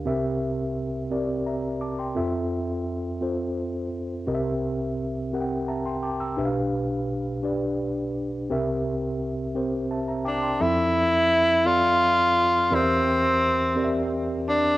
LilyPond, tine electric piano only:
<<
  \new Staff \with { instrumentName = "Tine electric piano" } { \time 6/8 \key f \major \tempo 4. = 57 << { r2 <e'' bes''>8 <a'' d'''>16 <g'' c'''>16~ | <g'' c'''>16 r2 r8. | r2 <e'' a'' bes''>16 <g'' c'''>16 <g'' a'' d'''>16 <bes'' e'''>16~ | <bes'' e'''>16 r2 r8. |
r2 <e'' a''>16 <e'' bes''>16 <g'' a'' d'''>16 <g'' c'''>16~ | <g'' c'''>16 r2 r8. | r2. | } \\ { <c' g' bes' e''>4 r8 <c' g' bes' d''>4 r8 | <c' f' a' e''>4 r8 <c' f' a' c''>4 r8 | <c' g' bes' ees'' e''>4 r8 <c' g' bes' ges'' g''>4 r8 | <d' g' b' e'' f''>4 r8 <d' g' b' d''>4 r8 |
<c' g' bes' e''>4 r8 <c' g' bes' c''>4 r8 | <f c' a' e''>4 r8 <c' f' a' d''>4 r8 | <c' g' bes' d'' e''>4 r8 <c' g' bes' d'' e''>4 r8 | } >> }
  \new Staff \with { instrumentName = "Tine electric piano" } { \clef bass \time 6/8 \key f \major <c, c>2. | f,2. | <c, c>2. | <b,, b,>2. |
<c, c>2. | f,2. | <e, e>2. | }
>>